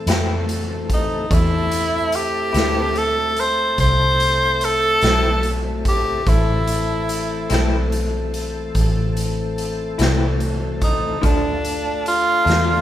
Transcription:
Already playing: tonewheel organ E3 A3 C4 A4
0.06 fingered electric bass F2, clean electric guitar A2 E3 C4 E4, snare, closed hi-hat
0.49 closed hi-hat
0.90 tenor saxophone D#4, kick, closed hi-hat
1.30 fingered electric bass E2, tonewheel organ A3 C4 E4 A4, tenor saxophone E4, kick, closed hi-hat
1.71 closed hi-hat
2.12 tenor saxophone G4, closed hi-hat
2.52 fingered electric bass D2, clean electric guitar A2 E3 C4 E4, closed hi-hat
2.57 snare
2.95 tenor saxophone A4, closed hi-hat
3.37 tenor saxophone C5, closed hi-hat
3.78 fingered electric bass C2, tenor saxophone C5, kick, closed hi-hat
4.20 closed hi-hat
4.61 tenor saxophone A4, closed hi-hat
5.01 fingered electric bass B1, clean electric guitar A2 E3 C4 E4, snare, closed hi-hat
5.43 closed hi-hat
5.85 tenor saxophone G4, kick, closed hi-hat
6.26 fingered electric bass A1, tonewheel organ E3 A3 C4 A4, tenor saxophone E4, kick, closed hi-hat
6.67 closed hi-hat
7.09 closed hi-hat
7.50 fingered electric bass B1, clean electric guitar A2 E3 C4 E4, snare, closed hi-hat
7.92 closed hi-hat
8.34 closed hi-hat
8.75 fingered electric bass A1, kick, closed hi-hat
9.17 closed hi-hat
9.58 closed hi-hat
9.98 fingered electric bass C2, clean electric guitar A2 E3 C4 E4, snare, closed hi-hat
10.40 closed hi-hat
10.82 tenor saxophone D#4, kick, closed hi-hat
11.21 fingered electric bass D2, clean electric guitar D3 F3 A3 D4, tonewheel organ A3 D4 F4 A4, tenor saxophone D4, kick, closed hi-hat
11.65 closed hi-hat
12.06 tenor saxophone F4, closed hi-hat
12.45 fingered electric bass E2, clean electric guitar D3 F3 A3 D4, closed hi-hat
12.50 snare

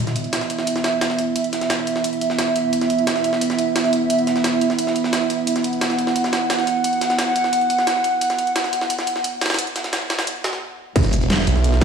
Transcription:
0.00 analog synth pad B3 E4 E5
0.07 snare, closed hi-hat
0.16 closed hi-hat
0.24 closed hi-hat
0.33 snare, closed hi-hat
0.41 snare
0.50 closed hi-hat
0.58 snare
0.67 closed hi-hat
0.76 snare
0.84 snare, closed hi-hat
1.01 snare, closed hi-hat
1.10 snare
1.19 closed hi-hat
1.36 closed hi-hat
1.44 closed hi-hat
1.53 snare, closed hi-hat
1.61 snare, closed hi-hat
1.70 snare, closed hi-hat
1.87 closed hi-hat
1.96 snare
2.04 closed hi-hat
2.13 closed hi-hat
2.21 closed hi-hat
2.30 snare
2.39 snare, closed hi-hat
2.56 closed hi-hat
2.73 closed hi-hat
2.81 snare, closed hi-hat
2.90 closed hi-hat
2.99 closed hi-hat
3.07 snare, closed hi-hat
3.16 snare
3.24 closed hi-hat
3.33 snare
3.41 closed hi-hat
3.50 snare
3.59 closed hi-hat
3.76 snare, closed hi-hat
3.84 snare
3.93 closed hi-hat
4.10 closed hi-hat
4.19 closed hi-hat
4.27 snare, closed hi-hat
4.36 snare, closed hi-hat
4.44 snare, closed hi-hat
4.61 closed hi-hat
4.70 snare
4.79 closed hi-hat
4.87 snare
4.96 closed hi-hat
5.04 snare
5.13 snare, closed hi-hat
5.30 closed hi-hat
5.47 analog synth pad F#5, closed hi-hat
5.56 snare, closed hi-hat
5.64 closed hi-hat
5.73 closed hi-hat
5.81 snare, closed hi-hat
5.90 snare
5.99 closed hi-hat
6.07 snare
6.16 closed hi-hat
6.24 snare
6.33 snare, closed hi-hat
6.50 snare, closed hi-hat
6.59 snare
6.67 closed hi-hat
6.84 closed hi-hat
6.93 closed hi-hat
7.01 snare, closed hi-hat
7.10 snare, closed hi-hat
7.19 snare, closed hi-hat
7.36 closed hi-hat
7.44 snare
7.53 closed hi-hat
7.61 closed hi-hat
7.70 closed hi-hat
7.79 snare
7.87 snare, closed hi-hat
8.04 closed hi-hat
8.21 closed hi-hat
8.30 snare, closed hi-hat
8.39 closed hi-hat
8.47 closed hi-hat
8.56 snare, closed hi-hat
8.64 snare
8.73 closed hi-hat
8.81 snare
8.90 closed hi-hat
8.99 snare
9.07 closed hi-hat
9.16 snare
9.24 closed hi-hat
9.41 snare, closed hi-hat
9.46 snare, closed hi-hat
9.50 snare, closed hi-hat
9.54 snare, closed hi-hat
9.59 closed hi-hat
9.67 closed hi-hat
9.76 snare, closed hi-hat
9.84 snare, closed hi-hat
9.93 snare, closed hi-hat
10.10 snare, closed hi-hat
10.19 snare, closed hi-hat
10.27 closed hi-hat
10.44 snare, closed hi-hat
10.53 snare
10.96 detuned saw bass E1, analog synth pad B3 E4 E5, kick, closed hi-hat, crash
11.04 snare, closed hi-hat
11.13 closed hi-hat, shaker
11.21 closed hi-hat
11.30 snare, closed hi-hat, shaker
11.39 snare
11.47 detuned saw bass B1, closed hi-hat, shaker
11.56 snare
11.64 closed hi-hat
11.73 snare

